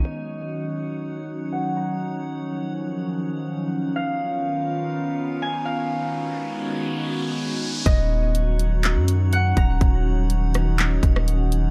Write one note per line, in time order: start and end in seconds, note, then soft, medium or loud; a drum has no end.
0.05 5.87 D#3 medium
0.05 3.92 F#3 medium
0.05 7.82 C#4 medium
0.05 7.82 D#4 medium
0.05 1.99 F#4 medium
0.05 3.92 C#5 medium
0.05 1.83 D#5 medium
0.05 3.92 F#5 medium
1.53 3.13 F#5 medium
1.77 3.17 A#5 medium
2.01 3.94 F3 medium
3.96 7.82 B3 medium
3.96 5.89 F4 medium
3.96 5.89 A#4 medium
3.96 7.82 B4 medium
3.96 7.82 C#5 medium
3.96 5.89 F5 medium
3.96 5.62 F5 loud
3.96 riser medium
5.42 6.92 G#5 medium
5.65 7.32 F5 medium
5.91 7.84 D#3 medium
5.91 7.84 G#3 medium
5.91 7.84 F#4 medium
5.91 7.84 G#5 medium
7.86 8.97 D#1 loud
7.86 11.71 D#3 medium
7.86 11.71 F#3 medium
7.86 11.71 C#4 medium
7.86 11.71 D#4 medium
7.86 11.71 F#4 medium
7.86 11.71 C#5 medium
7.86 9.64 D#5 loud
7.86 11.71 F#5 medium
7.86 kick loud
7.86 closed hi-hat medium
8.35 closed hi-hat medium
8.59 closed hi-hat medium
8.83 clap loud
8.83 closed hi-hat medium
8.96 9.54 F#2 loud
9.08 closed hi-hat medium
9.33 10.94 F#5 medium
9.33 closed hi-hat medium
9.57 9.80 D#1 loud
9.57 10.97 A#5 medium
9.57 kick medium
9.57 closed hi-hat medium
9.81 10.99 D#1 loud
9.81 kick loud
9.81 closed hi-hat medium
10.30 closed hi-hat medium
10.54 cross-stick medium
10.54 closed hi-hat medium
10.78 clap loud
10.78 closed hi-hat medium
11.03 11.71 D#1 loud
11.03 kick medium
11.03 closed hi-hat medium
11.16 cross-stick loud
11.28 closed hi-hat medium
11.52 closed hi-hat medium